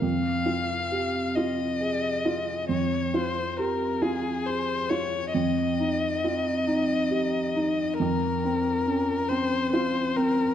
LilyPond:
<<
  \new Staff \with { instrumentName = "Violin" } { \time 6/8 \key f \minor \tempo 4. = 46 f''4. ees''4. | des''8 c''8 bes'8 aes'8 c''8 des''8 | ees''2. | bes'4. c''8 c''8 bes'8 | }
  \new Staff \with { instrumentName = "Felt piano" } { \time 6/8 \key f \minor f,8 f'8 g'8 f'8 aes'8 f'8 | f,8 f'8 g'8 f'8 aes'8 f'8 | f,8 ees'8 f'8 ees'8 g'8 ees'8 | f,8 c'8 des'8 c'8 f'8 c'8 | }
>>